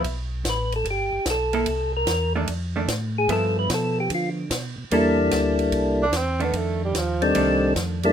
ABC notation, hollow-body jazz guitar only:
X:1
M:4/4
L:1/8
Q:"Swing" 1/4=148
K:Gdor
V:1 name="Hollow-body jazz guitar"
z6 z [B,EA] | z3 [_E,A,D] z [E,A,D] z2 | [F,=B,E]4- [F,B,E] z3 | [B,EA] z6 [_E,A,D]- |
[_E,A,D]2 z2 [E,A,D]3 z |]